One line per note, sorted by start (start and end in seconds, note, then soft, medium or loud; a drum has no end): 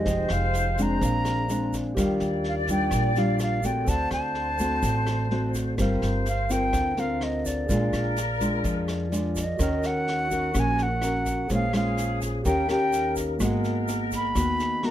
0.00 0.74 G#3 medium
0.00 0.74 D#4 medium
0.00 0.75 G4 medium
0.00 0.33 D#5 medium
0.04 0.28 F1 medium
0.04 0.99 F3 medium
0.04 0.99 C5 soft
0.04 0.97 C5 loud
0.04 1.00 D#5 soft
0.04 kick medium
0.04 snare soft
0.04 shaker medium
0.09 1.01 G5 medium
0.29 0.98 F1 medium
0.29 0.84 F5 medium
0.29 cross-stick medium
0.29 snare soft
0.29 shaker soft
0.53 snare soft
0.53 shaker medium
0.77 1.46 G#3 medium
0.77 1.46 C4 medium
0.77 1.46 D4 medium
0.77 kick soft
0.77 snare soft
0.77 shaker medium
0.82 1.75 A#5 loud
0.99 1.93 A#1 medium
0.99 1.94 G#4 soft
0.99 1.69 A#4 medium
0.99 1.95 C5 soft
0.99 kick medium
0.99 snare soft
1.03 1.95 A#2 medium
1.03 1.96 D5 soft
1.03 1.97 F5 medium
1.03 shaker medium
1.25 cross-stick medium
1.25 snare soft
1.25 shaker soft
1.49 1.93 G#3 soft
1.49 1.93 C4 medium
1.49 1.94 D4 medium
1.49 snare soft
1.49 shaker medium
1.73 kick soft
1.73 snare soft
1.73 shaker medium
1.95 2.19 D#2 medium
1.95 2.90 D#3 medium
1.95 2.65 G3 medium
1.95 2.65 D4 medium
1.95 2.65 F4 medium
1.95 3.83 G4 medium
1.95 3.84 A#4 medium
1.95 3.84 D5 loud
1.95 3.85 D5 medium
1.95 kick medium
1.95 cross-stick medium
1.95 snare soft
1.95 shaker medium
2.00 3.86 F5 medium
2.20 2.88 D#2 medium
2.20 snare soft
2.20 shaker soft
2.44 snare soft
2.49 2.55 F5 medium
2.67 3.13 G3 medium
2.67 3.13 D4 medium
2.67 3.13 F4 medium
2.67 kick soft
2.67 snare soft
2.67 shaker medium
2.71 3.20 G5 medium
2.91 3.83 A#1 medium
2.91 3.86 A#2 medium
2.91 kick medium
2.91 cross-stick medium
2.91 snare soft
2.91 shaker medium
3.16 3.60 G3 medium
3.16 3.60 D4 medium
3.16 3.61 F4 medium
3.16 3.41 F5 medium
3.16 snare soft
3.16 shaker soft
3.39 3.67 F5 medium
3.39 cross-stick medium
3.39 snare soft
3.39 shaker medium
3.63 4.55 A3 medium
3.63 4.55 C4 medium
3.63 4.56 F#4 medium
3.63 3.90 G5 medium
3.63 kick soft
3.63 snare soft
3.63 shaker medium
3.85 4.10 D2 medium
3.85 4.81 D3 medium
3.85 5.73 A4 medium
3.85 5.74 C5 soft
3.85 5.77 C5 loud
3.85 5.75 D5 soft
3.85 4.12 A5 loud
3.85 kick medium
3.85 snare soft
3.85 shaker medium
3.90 5.76 F#5 medium
4.11 4.79 D2 medium
4.11 5.51 A5 loud
4.11 cross-stick medium
4.11 snare soft
4.11 shaker soft
4.35 snare soft
4.59 5.27 A3 medium
4.59 5.27 C4 medium
4.59 5.27 F#4 medium
4.59 kick soft
4.59 snare soft
4.59 shaker medium
4.83 5.74 A1 loud
4.83 5.76 A2 medium
4.83 kick medium
4.83 snare soft
4.83 shaker medium
5.06 cross-stick medium
5.06 snare soft
5.06 shaker soft
5.31 5.75 A3 medium
5.31 5.75 C4 medium
5.31 5.75 F#4 medium
5.31 snare soft
5.54 kick soft
5.54 snare soft
5.54 shaker medium
5.78 6.00 G1 medium
5.78 6.72 G3 medium
5.78 6.26 C4 medium
5.78 6.26 F4 medium
5.78 6.95 A#4 medium
5.78 6.26 A#4 medium
5.78 7.38 C5 loud
5.78 6.96 C5 medium
5.78 kick medium
5.78 cross-stick medium
5.78 snare soft
5.78 shaker medium
5.82 6.97 F5 medium
6.02 6.70 G1 medium
6.02 snare soft
6.02 shaker soft
6.25 6.53 F5 medium
6.25 snare soft
6.25 shaker medium
6.49 6.94 C4 medium
6.49 6.94 F4 medium
6.49 6.94 A#4 medium
6.49 7.01 G5 loud
6.49 kick soft
6.49 snare soft
6.49 shaker medium
6.73 7.65 D2 medium
6.73 7.67 D3 medium
6.73 kick medium
6.73 cross-stick medium
6.73 snare soft
6.73 shaker medium
6.97 7.65 C4 medium
6.97 7.65 F4 medium
6.97 7.67 A#4 soft
6.97 7.66 A#4 medium
6.97 7.70 C5 soft
6.97 7.70 F5 soft
6.97 7.25 F5 medium
6.97 snare soft
6.97 shaker soft
7.21 7.48 D#5 medium
7.21 cross-stick medium
7.21 snare soft
7.45 9.12 D5 medium
7.45 kick soft
7.45 snare soft
7.45 shaker medium
7.66 7.91 A#1 medium
7.66 8.63 A#2 medium
7.66 8.17 G#3 medium
7.66 9.54 G#4 medium
7.66 9.32 A#4 loud
7.66 9.56 A#4 soft
7.66 9.11 D5 soft
7.66 kick medium
7.66 snare soft
7.66 shaker medium
7.70 8.17 D4 medium
7.70 8.17 F4 medium
7.70 9.57 F5 medium
7.93 8.60 A#1 medium
7.93 cross-stick medium
7.93 snare soft
7.93 shaker soft
8.16 snare soft
8.16 shaker medium
8.40 9.08 G#3 medium
8.40 9.08 D4 medium
8.40 9.09 F4 medium
8.40 kick soft
8.40 snare soft
8.40 shaker medium
8.64 9.56 F2 medium
8.64 9.57 F3 medium
8.64 kick medium
8.64 snare soft
8.64 shaker medium
8.88 cross-stick medium
8.88 snare soft
8.88 shaker soft
9.12 9.43 G#3 medium
9.12 9.43 D4 medium
9.12 9.43 F4 medium
9.12 9.56 D5 medium
9.12 snare soft
9.12 shaker medium
9.36 9.88 D#5 medium
9.36 kick soft
9.36 snare soft
9.36 shaker medium
9.57 10.51 D#2 medium
9.57 10.53 D#3 medium
9.57 10.27 C#4 medium
9.57 11.45 F#4 soft
9.57 11.46 F#4 loud
9.57 10.28 F#4 medium
9.57 11.46 A#4 soft
9.57 10.28 A#4 medium
9.57 kick medium
9.57 cross-stick medium
9.57 snare soft
9.57 shaker medium
9.61 11.47 C#5 soft
9.61 11.48 F6 medium
9.83 10.61 F#5 loud
9.83 snare soft
9.83 shaker soft
10.07 snare soft
10.31 10.51 C#4 medium
10.31 10.51 F#4 medium
10.31 10.51 A#4 medium
10.31 kick soft
10.31 snare soft
10.31 shaker medium
10.54 11.46 A#1 medium
10.54 11.48 A#2 medium
10.54 10.86 C#4 medium
10.54 10.86 F#4 medium
10.54 10.86 A#4 medium
10.54 kick medium
10.54 cross-stick medium
10.54 snare soft
10.54 shaker medium
10.60 10.84 G#5 loud
10.78 snare soft
10.78 shaker soft
10.83 11.52 F#5 medium
11.02 11.49 C#4 medium
11.02 11.49 F#4 medium
11.02 11.49 A#4 medium
11.02 cross-stick medium
11.02 snare soft
11.02 shaker medium
11.25 kick soft
11.25 snare soft
11.25 shaker medium
11.48 12.41 A#1 medium
11.48 12.43 A#2 medium
11.48 11.64 G#3 medium
11.48 11.65 C#4 medium
11.48 11.65 F4 medium
11.48 12.43 G#4 medium
11.48 12.41 G#4 loud
11.48 12.44 C5 soft
11.48 12.45 C#5 soft
11.48 kick medium
11.48 snare soft
11.48 shaker medium
11.54 11.74 F5 medium
11.54 12.46 F5 medium
11.73 12.43 G#3 medium
11.73 12.44 C#4 medium
11.73 12.44 F4 medium
11.73 12.20 F5 medium
11.73 cross-stick medium
11.73 snare soft
11.73 shaker soft
11.97 snare soft
11.97 shaker medium
12.21 kick soft
12.21 snare soft
12.21 shaker medium
12.43 13.37 D#2 medium
12.43 13.38 D#3 medium
12.43 12.66 C#4 medium
12.43 13.38 G4 medium
12.43 12.66 G4 medium
12.43 13.39 A#4 soft
12.43 13.39 A#4 loud
12.43 12.66 A#4 medium
12.43 12.68 G5 loud
12.43 kick medium
12.43 snare soft
12.43 shaker medium
12.47 13.40 C#5 soft
12.47 13.41 F5 medium
12.69 13.37 C#4 medium
12.69 13.38 G4 medium
12.69 13.38 A#4 medium
12.69 13.15 G5 loud
12.69 cross-stick medium
12.69 snare soft
12.69 shaker soft
12.93 snare soft
12.93 shaker medium
13.16 kick soft
13.16 snare soft
13.16 shaker medium
13.39 14.32 G#1 medium
13.39 14.33 G#3 medium
13.39 14.91 A#3 medium
13.39 14.05 B3 medium
13.39 14.05 F#4 medium
13.39 14.91 A#4 loud
13.39 14.05 A#4 medium
13.39 14.91 D#5 medium
13.39 kick medium
13.39 cross-stick medium
13.39 snare soft
13.39 shaker medium
13.45 14.91 F#5 medium
13.64 snare soft
13.64 shaker soft
13.88 snare soft
13.88 shaker medium
14.12 14.87 B5 loud
14.12 kick soft
14.12 snare soft
14.12 shaker medium
14.35 14.91 D#2 medium
14.35 14.91 D#3 medium
14.35 14.80 B3 medium
14.35 14.80 F#4 medium
14.35 kick medium
14.35 cross-stick medium
14.35 snare soft
14.35 shaker medium
14.60 snare soft
14.60 shaker soft
14.83 14.91 B3 medium
14.83 14.91 F#4 medium
14.83 14.91 A#4 medium
14.83 14.91 A#5 loud
14.83 cross-stick medium
14.83 snare soft